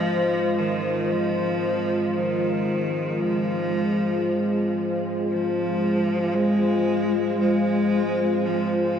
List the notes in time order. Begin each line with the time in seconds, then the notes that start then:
Already playing: F3 G#3 F4 C5 D#5
0.58 D#3
1.11 F3
2.17 D#3
3.20 F3
5.31 F3
6.35 G#3
7.40 G#3
8.46 F3